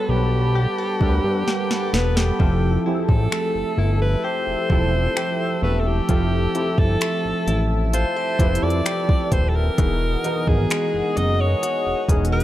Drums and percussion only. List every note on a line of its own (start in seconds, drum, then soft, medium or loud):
1.01 kick medium
1.48 snare soft
1.71 snare medium
1.94 snare medium
2.17 snare medium
2.40 kick loud
3.09 kick medium
3.32 finger snap loud
4.70 kick loud
5.17 finger snap loud
6.09 kick loud
6.09 closed hi-hat medium
6.55 closed hi-hat medium
6.78 kick medium
7.01 finger snap loud
7.01 closed hi-hat medium
7.48 closed hi-hat medium
7.93 closed hi-hat medium
8.39 kick medium
8.39 closed hi-hat medium
8.55 closed hi-hat medium
8.70 closed hi-hat soft
8.86 finger snap loud
8.86 closed hi-hat medium
9.09 kick medium
9.32 kick medium
9.32 closed hi-hat medium
9.78 kick medium
9.78 closed hi-hat medium
10.24 closed hi-hat medium
10.47 kick medium
10.70 finger snap loud
10.70 closed hi-hat medium
11.17 closed hi-hat medium
11.63 closed hi-hat medium
12.09 kick medium
12.09 closed hi-hat medium
12.25 closed hi-hat medium
12.40 closed hi-hat soft